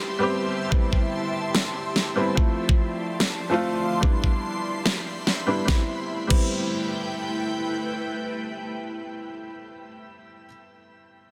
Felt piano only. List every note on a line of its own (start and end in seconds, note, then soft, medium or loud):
0.00 0.17 G3 medium
0.00 0.18 B3 medium
0.00 0.18 C4 medium
0.00 0.19 E4 medium
0.19 0.68 G3 medium
0.19 0.69 B3 medium
0.19 0.70 C4 medium
0.19 0.70 G4 medium
0.70 2.13 G3 medium
0.70 2.14 B3 medium
0.70 2.15 C4 medium
0.74 2.15 E4 medium
2.16 2.34 G3 medium
2.16 2.35 B3 medium
2.16 2.35 C4 medium
2.16 2.35 E4 medium
2.35 3.48 F3 medium
2.35 3.49 A3 medium
2.35 3.49 C4 medium
2.35 3.50 E4 medium
3.50 3.99 F3 medium
3.50 4.00 A3 medium
3.50 4.01 C4 medium
3.50 4.01 F4 loud
4.01 5.44 G3 medium
4.01 5.45 B3 medium
4.01 5.46 D4 medium
4.05 5.46 E4 medium
5.47 5.64 G3 medium
5.47 5.66 B3 medium
5.47 5.66 D4 medium
5.47 5.66 E4 medium
5.65 5.79 G3 medium
5.65 5.80 B3 medium
5.71 5.82 E4 medium
6.27 10.44 G3 medium
6.27 10.45 B3 medium
6.31 10.46 C4 medium
6.31 10.47 E4 medium